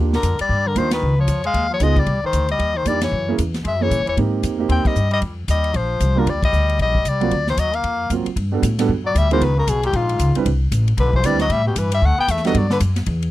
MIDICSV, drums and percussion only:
0, 0, Header, 1, 2, 480
1, 0, Start_track
1, 0, Key_signature, -3, "major"
1, 0, Tempo, 261894
1, 1875, Time_signature, 4, 2, 24, 8
1, 15326, Key_signature, 1, "major"
1, 24391, End_track
2, 0, Start_track
2, 0, Title_t, "Drums"
2, 237, Note_on_c, 9, 38, 49
2, 421, Note_off_c, 9, 38, 0
2, 422, Note_on_c, 9, 36, 20
2, 422, Note_on_c, 9, 44, 57
2, 422, Note_on_c, 9, 51, 59
2, 605, Note_off_c, 9, 36, 0
2, 606, Note_off_c, 9, 44, 0
2, 606, Note_off_c, 9, 51, 0
2, 714, Note_on_c, 9, 51, 60
2, 897, Note_off_c, 9, 51, 0
2, 902, Note_on_c, 9, 36, 23
2, 1086, Note_off_c, 9, 36, 0
2, 1382, Note_on_c, 9, 36, 16
2, 1388, Note_on_c, 9, 44, 48
2, 1388, Note_on_c, 9, 51, 55
2, 1565, Note_off_c, 9, 36, 0
2, 1571, Note_off_c, 9, 44, 0
2, 1571, Note_off_c, 9, 51, 0
2, 1670, Note_on_c, 9, 38, 70
2, 1672, Note_on_c, 9, 51, 63
2, 1854, Note_off_c, 9, 38, 0
2, 1856, Note_off_c, 9, 51, 0
2, 2339, Note_on_c, 9, 44, 56
2, 2339, Note_on_c, 9, 51, 63
2, 2342, Note_on_c, 9, 36, 20
2, 2522, Note_off_c, 9, 44, 0
2, 2522, Note_off_c, 9, 51, 0
2, 2525, Note_off_c, 9, 36, 0
2, 2635, Note_on_c, 9, 51, 39
2, 2818, Note_off_c, 9, 51, 0
2, 2822, Note_on_c, 9, 36, 23
2, 2826, Note_on_c, 9, 51, 53
2, 3005, Note_off_c, 9, 36, 0
2, 3009, Note_off_c, 9, 51, 0
2, 3299, Note_on_c, 9, 44, 52
2, 3299, Note_on_c, 9, 51, 57
2, 3302, Note_on_c, 9, 36, 25
2, 3482, Note_off_c, 9, 44, 0
2, 3482, Note_off_c, 9, 51, 0
2, 3486, Note_off_c, 9, 36, 0
2, 3594, Note_on_c, 9, 36, 57
2, 3599, Note_on_c, 9, 51, 41
2, 3778, Note_off_c, 9, 36, 0
2, 3782, Note_off_c, 9, 51, 0
2, 3784, Note_on_c, 9, 36, 20
2, 3784, Note_on_c, 9, 51, 49
2, 3967, Note_off_c, 9, 36, 0
2, 3967, Note_off_c, 9, 51, 0
2, 4268, Note_on_c, 9, 36, 18
2, 4270, Note_on_c, 9, 44, 55
2, 4270, Note_on_c, 9, 51, 55
2, 4451, Note_off_c, 9, 36, 0
2, 4453, Note_off_c, 9, 44, 0
2, 4453, Note_off_c, 9, 51, 0
2, 4555, Note_on_c, 9, 51, 43
2, 4738, Note_off_c, 9, 51, 0
2, 4748, Note_on_c, 9, 36, 15
2, 4754, Note_on_c, 9, 51, 49
2, 4932, Note_off_c, 9, 36, 0
2, 4938, Note_off_c, 9, 51, 0
2, 5232, Note_on_c, 9, 36, 21
2, 5233, Note_on_c, 9, 44, 46
2, 5233, Note_on_c, 9, 51, 51
2, 5415, Note_off_c, 9, 36, 0
2, 5416, Note_off_c, 9, 44, 0
2, 5416, Note_off_c, 9, 51, 0
2, 5522, Note_on_c, 9, 38, 67
2, 5524, Note_on_c, 9, 51, 59
2, 5706, Note_off_c, 9, 38, 0
2, 5707, Note_off_c, 9, 51, 0
2, 6196, Note_on_c, 9, 36, 20
2, 6204, Note_on_c, 9, 44, 59
2, 6204, Note_on_c, 9, 51, 67
2, 6379, Note_off_c, 9, 36, 0
2, 6387, Note_off_c, 9, 44, 0
2, 6387, Note_off_c, 9, 51, 0
2, 6491, Note_on_c, 9, 38, 46
2, 6493, Note_on_c, 9, 51, 40
2, 6674, Note_off_c, 9, 38, 0
2, 6676, Note_off_c, 9, 51, 0
2, 6680, Note_on_c, 9, 36, 20
2, 6683, Note_on_c, 9, 51, 49
2, 6863, Note_off_c, 9, 36, 0
2, 6866, Note_off_c, 9, 51, 0
2, 7161, Note_on_c, 9, 36, 19
2, 7171, Note_on_c, 9, 44, 51
2, 7171, Note_on_c, 9, 51, 53
2, 7345, Note_off_c, 9, 36, 0
2, 7354, Note_off_c, 9, 44, 0
2, 7354, Note_off_c, 9, 51, 0
2, 7460, Note_on_c, 9, 51, 38
2, 7642, Note_on_c, 9, 36, 23
2, 7643, Note_off_c, 9, 51, 0
2, 7650, Note_on_c, 9, 51, 51
2, 7825, Note_off_c, 9, 36, 0
2, 7833, Note_off_c, 9, 51, 0
2, 8121, Note_on_c, 9, 36, 22
2, 8124, Note_on_c, 9, 44, 56
2, 8124, Note_on_c, 9, 51, 61
2, 8304, Note_off_c, 9, 36, 0
2, 8308, Note_off_c, 9, 44, 0
2, 8308, Note_off_c, 9, 51, 0
2, 8598, Note_on_c, 9, 36, 23
2, 8604, Note_on_c, 9, 51, 52
2, 8782, Note_off_c, 9, 36, 0
2, 8787, Note_off_c, 9, 51, 0
2, 8890, Note_on_c, 9, 36, 73
2, 8896, Note_on_c, 9, 51, 65
2, 9073, Note_off_c, 9, 36, 0
2, 9079, Note_off_c, 9, 51, 0
2, 9083, Note_on_c, 9, 44, 48
2, 9266, Note_off_c, 9, 44, 0
2, 9364, Note_on_c, 9, 51, 39
2, 9547, Note_off_c, 9, 51, 0
2, 9559, Note_on_c, 9, 36, 20
2, 9560, Note_on_c, 9, 51, 59
2, 9742, Note_off_c, 9, 36, 0
2, 9743, Note_off_c, 9, 51, 0
2, 10040, Note_on_c, 9, 36, 19
2, 10043, Note_on_c, 9, 44, 61
2, 10043, Note_on_c, 9, 51, 60
2, 10223, Note_off_c, 9, 36, 0
2, 10227, Note_off_c, 9, 44, 0
2, 10227, Note_off_c, 9, 51, 0
2, 10335, Note_on_c, 9, 51, 41
2, 10518, Note_off_c, 9, 51, 0
2, 10518, Note_on_c, 9, 36, 18
2, 10522, Note_on_c, 9, 51, 51
2, 10702, Note_off_c, 9, 36, 0
2, 10705, Note_off_c, 9, 51, 0
2, 11002, Note_on_c, 9, 36, 21
2, 11004, Note_on_c, 9, 44, 56
2, 11004, Note_on_c, 9, 51, 53
2, 11186, Note_off_c, 9, 36, 0
2, 11187, Note_off_c, 9, 44, 0
2, 11187, Note_off_c, 9, 51, 0
2, 11484, Note_on_c, 9, 36, 18
2, 11489, Note_on_c, 9, 51, 53
2, 11668, Note_off_c, 9, 36, 0
2, 11672, Note_off_c, 9, 51, 0
2, 11778, Note_on_c, 9, 36, 74
2, 11789, Note_on_c, 9, 51, 69
2, 11961, Note_off_c, 9, 36, 0
2, 11972, Note_on_c, 9, 44, 49
2, 11973, Note_off_c, 9, 51, 0
2, 12155, Note_off_c, 9, 44, 0
2, 12269, Note_on_c, 9, 51, 40
2, 12443, Note_on_c, 9, 36, 24
2, 12448, Note_off_c, 9, 51, 0
2, 12448, Note_on_c, 9, 51, 50
2, 12626, Note_off_c, 9, 36, 0
2, 12631, Note_off_c, 9, 51, 0
2, 12732, Note_on_c, 9, 36, 39
2, 12916, Note_off_c, 9, 36, 0
2, 12921, Note_on_c, 9, 36, 17
2, 12924, Note_on_c, 9, 44, 48
2, 12924, Note_on_c, 9, 51, 63
2, 13104, Note_off_c, 9, 36, 0
2, 13107, Note_off_c, 9, 44, 0
2, 13107, Note_off_c, 9, 51, 0
2, 13217, Note_on_c, 9, 51, 39
2, 13400, Note_off_c, 9, 51, 0
2, 13401, Note_on_c, 9, 36, 17
2, 13403, Note_on_c, 9, 51, 47
2, 13584, Note_off_c, 9, 36, 0
2, 13586, Note_off_c, 9, 51, 0
2, 13694, Note_on_c, 9, 38, 45
2, 13877, Note_off_c, 9, 38, 0
2, 13880, Note_on_c, 9, 36, 25
2, 13882, Note_on_c, 9, 44, 54
2, 13882, Note_on_c, 9, 51, 65
2, 14063, Note_off_c, 9, 36, 0
2, 14066, Note_off_c, 9, 44, 0
2, 14066, Note_off_c, 9, 51, 0
2, 14175, Note_on_c, 9, 51, 42
2, 14358, Note_off_c, 9, 51, 0
2, 14360, Note_on_c, 9, 36, 17
2, 14363, Note_on_c, 9, 51, 47
2, 14543, Note_off_c, 9, 36, 0
2, 14546, Note_off_c, 9, 51, 0
2, 14841, Note_on_c, 9, 36, 16
2, 14847, Note_on_c, 9, 44, 48
2, 14847, Note_on_c, 9, 51, 57
2, 15025, Note_off_c, 9, 36, 0
2, 15030, Note_off_c, 9, 44, 0
2, 15030, Note_off_c, 9, 51, 0
2, 15139, Note_on_c, 9, 51, 41
2, 15323, Note_off_c, 9, 51, 0
2, 15323, Note_on_c, 9, 36, 26
2, 15333, Note_on_c, 9, 51, 59
2, 15506, Note_off_c, 9, 36, 0
2, 15517, Note_off_c, 9, 51, 0
2, 15806, Note_on_c, 9, 36, 27
2, 15818, Note_on_c, 9, 44, 61
2, 15818, Note_on_c, 9, 51, 73
2, 15989, Note_off_c, 9, 36, 0
2, 16001, Note_off_c, 9, 44, 0
2, 16001, Note_off_c, 9, 51, 0
2, 16105, Note_on_c, 9, 38, 46
2, 16106, Note_on_c, 9, 51, 67
2, 16287, Note_on_c, 9, 36, 20
2, 16288, Note_off_c, 9, 38, 0
2, 16290, Note_off_c, 9, 51, 0
2, 16470, Note_off_c, 9, 36, 0
2, 16768, Note_on_c, 9, 36, 16
2, 16780, Note_on_c, 9, 44, 52
2, 16780, Note_on_c, 9, 51, 64
2, 16952, Note_off_c, 9, 36, 0
2, 16963, Note_off_c, 9, 44, 0
2, 16963, Note_off_c, 9, 51, 0
2, 17063, Note_on_c, 9, 51, 46
2, 17246, Note_off_c, 9, 51, 0
2, 17247, Note_on_c, 9, 36, 21
2, 17254, Note_on_c, 9, 51, 58
2, 17430, Note_off_c, 9, 36, 0
2, 17437, Note_off_c, 9, 51, 0
2, 17727, Note_on_c, 9, 36, 20
2, 17733, Note_on_c, 9, 44, 60
2, 17733, Note_on_c, 9, 51, 70
2, 17910, Note_off_c, 9, 36, 0
2, 17916, Note_off_c, 9, 44, 0
2, 17916, Note_off_c, 9, 51, 0
2, 18021, Note_on_c, 9, 51, 52
2, 18205, Note_off_c, 9, 51, 0
2, 18205, Note_on_c, 9, 36, 26
2, 18206, Note_on_c, 9, 51, 56
2, 18388, Note_off_c, 9, 36, 0
2, 18389, Note_off_c, 9, 51, 0
2, 18497, Note_on_c, 9, 51, 45
2, 18680, Note_off_c, 9, 51, 0
2, 18681, Note_on_c, 9, 36, 19
2, 18684, Note_on_c, 9, 44, 59
2, 18684, Note_on_c, 9, 51, 64
2, 18865, Note_off_c, 9, 36, 0
2, 18867, Note_off_c, 9, 44, 0
2, 18867, Note_off_c, 9, 51, 0
2, 18972, Note_on_c, 9, 51, 48
2, 19155, Note_off_c, 9, 51, 0
2, 19163, Note_on_c, 9, 36, 18
2, 19165, Note_on_c, 9, 51, 64
2, 19346, Note_off_c, 9, 36, 0
2, 19349, Note_off_c, 9, 51, 0
2, 19638, Note_on_c, 9, 36, 21
2, 19644, Note_on_c, 9, 44, 57
2, 19644, Note_on_c, 9, 51, 68
2, 19822, Note_off_c, 9, 36, 0
2, 19827, Note_off_c, 9, 44, 0
2, 19827, Note_off_c, 9, 51, 0
2, 19934, Note_on_c, 9, 51, 45
2, 20115, Note_on_c, 9, 36, 23
2, 20117, Note_off_c, 9, 51, 0
2, 20117, Note_on_c, 9, 51, 64
2, 20299, Note_off_c, 9, 36, 0
2, 20301, Note_off_c, 9, 51, 0
2, 20404, Note_on_c, 9, 36, 46
2, 20587, Note_off_c, 9, 36, 0
2, 20592, Note_on_c, 9, 36, 22
2, 20593, Note_on_c, 9, 44, 57
2, 20593, Note_on_c, 9, 51, 73
2, 20775, Note_off_c, 9, 36, 0
2, 20776, Note_off_c, 9, 44, 0
2, 20776, Note_off_c, 9, 51, 0
2, 20881, Note_on_c, 9, 38, 35
2, 20882, Note_on_c, 9, 51, 49
2, 21064, Note_off_c, 9, 38, 0
2, 21066, Note_off_c, 9, 51, 0
2, 21068, Note_on_c, 9, 36, 25
2, 21071, Note_on_c, 9, 51, 59
2, 21251, Note_off_c, 9, 36, 0
2, 21254, Note_off_c, 9, 51, 0
2, 21550, Note_on_c, 9, 36, 21
2, 21550, Note_on_c, 9, 44, 56
2, 21550, Note_on_c, 9, 51, 66
2, 21733, Note_off_c, 9, 36, 0
2, 21733, Note_off_c, 9, 44, 0
2, 21733, Note_off_c, 9, 51, 0
2, 21840, Note_on_c, 9, 51, 68
2, 22023, Note_off_c, 9, 51, 0
2, 22028, Note_on_c, 9, 36, 20
2, 22211, Note_off_c, 9, 36, 0
2, 22509, Note_on_c, 9, 36, 22
2, 22512, Note_on_c, 9, 44, 54
2, 22512, Note_on_c, 9, 51, 68
2, 22669, Note_on_c, 9, 38, 30
2, 22692, Note_off_c, 9, 36, 0
2, 22695, Note_off_c, 9, 44, 0
2, 22695, Note_off_c, 9, 51, 0
2, 22810, Note_on_c, 9, 51, 46
2, 22831, Note_off_c, 9, 38, 0
2, 22831, Note_on_c, 9, 38, 46
2, 22990, Note_on_c, 9, 36, 23
2, 22993, Note_off_c, 9, 51, 0
2, 22993, Note_on_c, 9, 51, 63
2, 23014, Note_off_c, 9, 38, 0
2, 23173, Note_off_c, 9, 36, 0
2, 23177, Note_off_c, 9, 51, 0
2, 23278, Note_on_c, 9, 38, 59
2, 23462, Note_off_c, 9, 38, 0
2, 23467, Note_on_c, 9, 36, 19
2, 23467, Note_on_c, 9, 44, 53
2, 23467, Note_on_c, 9, 51, 75
2, 23650, Note_off_c, 9, 36, 0
2, 23650, Note_off_c, 9, 44, 0
2, 23650, Note_off_c, 9, 51, 0
2, 23753, Note_on_c, 9, 38, 41
2, 23755, Note_on_c, 9, 51, 50
2, 23936, Note_off_c, 9, 38, 0
2, 23938, Note_off_c, 9, 51, 0
2, 23941, Note_on_c, 9, 51, 65
2, 23946, Note_on_c, 9, 36, 26
2, 24125, Note_off_c, 9, 51, 0
2, 24129, Note_off_c, 9, 36, 0
2, 24238, Note_on_c, 9, 51, 44
2, 24391, Note_off_c, 9, 51, 0
2, 24391, End_track
0, 0, End_of_file